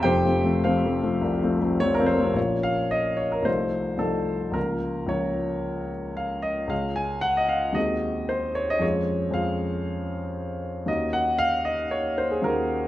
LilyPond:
<<
  \new Staff \with { instrumentName = "Grand piano" } { \time 4/4 \key bes \minor \tempo 4 = 112 <g' c'' g''>4 <f' c'' f''>2 des''16 bes'16 c''8 | des''8 f''8 ees''8 des''16 bes'16 c''4 a'4 | bes'4 des''4. r8 f''8 ees''8 | f''8 aes''8 ges''16 ees''16 f''8 ees''4 c''8 des''16 ees''16 |
des''4 f''4. r4. | ees''8 ges''8 f''8 ees''8 des''8 c''16 aes'16 bes'4 | }
  \new Staff \with { instrumentName = "Grand piano" } { \time 4/4 \key bes \minor \tuplet 3/2 { <f,, f,>8 <f a c'>8 <f a c'>8 <f a c'>8 <f a c'>8 <f a c'>8 c,8 <f a c'>8 <f a c'>8 <f a c'>8 <f a c'>8 <f a c'>8 } | <bes,, f bes des'>2 <c, f a ees'>4 <c, f a ees'>4 | <des, f bes f'>4 <des, f bes f'>2. | <des, aes des' f'>2 <ees, aes c' ges'>2 |
<f, aes des' f'>4 <f, aes des' f'>2. | <ees, bes des' ges'>2. <ees, bes des' ges'>4 | }
>>